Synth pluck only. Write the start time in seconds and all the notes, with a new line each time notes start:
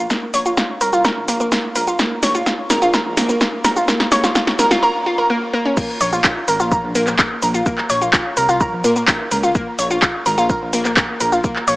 0.10 A#3
0.34 C#5
0.46 F4
0.57 F4
0.81 A#4
0.93 F4
1.05 A#4
1.28 A#3
1.40 A#3
1.52 A#3
1.75 A#4
1.87 F4
1.99 A#3
2.23 C#5
2.35 F4
2.46 F4
2.70 A#4
2.82 F4
2.94 A#4
3.17 A#3
3.29 A#3
3.41 A#3
3.64 A#4
3.76 F4
3.88 A#3
4.12 C#5
4.24 F4
4.35 F4
4.59 A#4
4.71 F4
4.83 A#4
5.06 F4
5.18 A#4
5.30 A#3
5.53 A#3
5.65 C#4
5.77 A#3
6.01 C#5
6.13 F4
6.24 F4
6.48 A#4
6.60 F4
6.72 A#4
6.95 A#3
7.07 A#3
7.19 A#3
7.42 A#4
7.54 F4
7.66 A#3
7.90 C#5
8.02 F4
8.13 F4
8.37 A#4
8.49 F4
8.61 A#4
8.84 A#3
8.96 A#3
9.08 A#3
9.31 A#4
9.43 F4
9.55 A#3
9.79 C#5
9.91 F4
10.02 F4
10.26 A#4
10.38 F4
10.49 A#4
10.73 A#3
10.85 A#3
10.97 A#3
11.20 A#4
11.32 F4
11.44 A#3
11.68 C#5